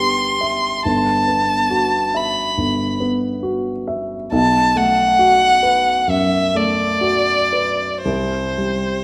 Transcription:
0.00 0.81 G1 soft
0.00 0.23 B3 soft
0.00 0.68 G4 soft
0.00 0.86 C6 medium
0.41 0.85 E5 soft
0.85 2.54 G1 soft
0.85 2.18 A5 medium
1.28 1.97 B3 soft
1.71 2.41 F#4 soft
2.14 2.83 E5 soft
2.14 3.01 B5 medium
2.58 4.29 G1 soft
3.00 3.70 B3 soft
3.43 4.14 F#4 soft
3.88 4.33 E5 soft
4.32 6.05 B1 soft
4.32 4.79 A5 medium
4.76 5.46 A3 soft
4.76 6.11 F#5 medium
5.19 5.90 F#4 soft
5.63 6.36 B4 soft
6.07 6.83 F#2 soft
6.07 6.58 E5 medium
6.55 7.32 A3 soft
6.55 8.03 D5 medium
7.01 7.83 F#4 soft
7.53 8.05 B4 soft
8.04 9.04 C2 soft
8.04 9.04 C5 medium
8.58 9.04 G3 soft

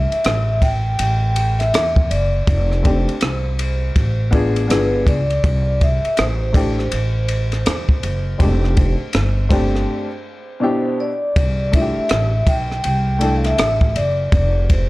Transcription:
0.00 0.65 E5 medium
0.12 muted upright bass stroke soft
0.12 ride soft
0.24 0.96 A1 medium
0.24 cross-stick loud
0.24 hi-hat pedal soft
0.24 ride medium
0.62 0.96 G5 medium
0.62 kick medium
0.62 ride medium
0.99 1.70 A1 medium
0.99 1.61 G5 medium
0.99 ride medium
1.36 ride medium
1.59 2.07 E5 loud
1.59 cross-stick soft
1.59 ride soft
1.74 2.09 E2 medium
1.74 cross-stick loud
1.74 hi-hat pedal soft
1.74 ride medium
1.96 kick medium
2.10 2.46 F#1 medium
2.10 2.87 D5 medium
2.10 ride medium
2.47 3.05 F1 loud
2.47 kick loud
2.47 ride medium
2.72 cross-stick soft
2.83 3.12 A3 medium
2.83 3.13 C4 medium
2.83 3.13 D4 medium
2.83 3.14 G4 medium
2.83 4.28 C5 medium
2.83 kick medium
2.83 ride medium
3.08 muted upright bass stroke soft
3.08 ride soft
3.21 3.92 C2 medium
3.21 cross-stick loud
3.21 hi-hat pedal soft
3.21 ride medium
3.59 ride medium
3.96 4.66 A1 medium
3.96 kick medium
3.96 ride medium
4.31 4.66 B3 medium
4.31 4.68 D4 medium
4.31 4.69 F4 medium
4.31 4.70 G#4 medium
4.31 kick medium
4.31 ride medium
4.56 ride soft
4.68 5.05 G1 medium
4.68 5.15 B3 medium
4.68 5.16 D4 medium
4.68 5.16 F4 medium
4.68 5.17 G#4 medium
4.68 5.05 B4 medium
4.68 cross-stick medium
4.68 hi-hat pedal soft
4.68 ride medium
5.07 5.42 C#2 medium
5.07 5.84 D5 loud
5.07 kick medium
5.07 ride medium
5.30 ride soft
5.44 6.01 C2 loud
5.44 kick loud
5.44 ride medium
5.81 6.20 E5 medium
5.81 kick medium
5.81 ride medium
6.05 muted upright bass stroke soft
6.05 ride soft
6.17 6.89 A1 medium
6.17 10.59 C5 medium
6.17 cross-stick loud
6.17 hi-hat pedal soft
6.17 ride medium
6.53 6.82 A3 medium
6.53 6.83 D4 medium
6.53 6.84 E4 medium
6.53 6.84 G4 medium
6.53 kick medium
6.53 ride medium
6.79 cross-stick soft
6.92 7.63 A1 medium
6.92 ride medium
7.28 ride medium
7.52 cross-stick soft
7.52 ride soft
7.66 8.01 E2 medium
7.66 cross-stick loud
7.66 hi-hat pedal medium
7.66 ride medium
7.89 kick medium
8.03 8.38 F#1 medium
8.03 ride medium
8.38 8.97 F1 loud
8.38 8.47 G#3 medium
8.38 8.95 C4 medium
8.38 8.96 D4 medium
8.38 8.96 G4 medium
8.38 kick loud
8.38 ride medium
8.45 8.98 A3 medium
8.64 cross-stick soft
8.77 kick medium
8.77 ride medium
9.01 muted upright bass stroke soft
9.13 9.85 G1 loud
9.13 cross-stick loud
9.13 hi-hat pedal soft
9.13 ride medium
9.49 10.06 A3 medium
9.49 10.06 C4 medium
9.49 10.07 D4 medium
9.49 10.08 G4 medium
9.49 kick medium
9.49 ride medium
9.76 cross-stick soft
10.60 11.07 B2 medium
10.60 11.08 D4 medium
10.60 11.09 E4 medium
10.60 11.09 G4 medium
10.60 11.01 C5 medium
11.00 11.76 D5 medium
11.36 11.94 C2 medium
11.36 kick loud
11.36 ride medium
11.71 12.28 A3 medium
11.71 12.28 D4 medium
11.71 12.29 E4 medium
11.71 11.82 F4 medium
11.71 12.50 E5 medium
11.71 kick medium
11.71 ride medium
11.81 12.33 G4 medium
11.97 muted upright bass stroke soft
12.09 12.46 A1 medium
12.09 cross-stick loud
12.09 hi-hat pedal soft
12.09 ride medium
12.47 12.82 B1 medium
12.47 12.84 G5 medium
12.47 kick medium
12.47 ride medium
12.71 cross-stick soft
12.84 13.55 C2 medium
12.84 13.33 G5 medium
12.84 ride medium
13.19 13.76 A3 medium
13.19 13.76 D4 medium
13.19 13.77 E4 medium
13.19 13.77 A4 medium
13.19 ride medium
13.36 13.45 F5 medium
13.44 13.92 E5 medium
13.44 cross-stick soft
13.44 ride soft
13.58 13.94 A1 medium
13.58 cross-stick loud
13.58 hi-hat pedal soft
13.58 ride medium
13.81 kick medium
13.96 14.31 F#1 medium
13.96 14.66 D5 medium
13.96 ride medium
14.32 14.89 F1 loud
14.32 kick loud
14.32 ride medium
14.70 14.89 C5 medium
14.70 kick medium
14.70 ride medium

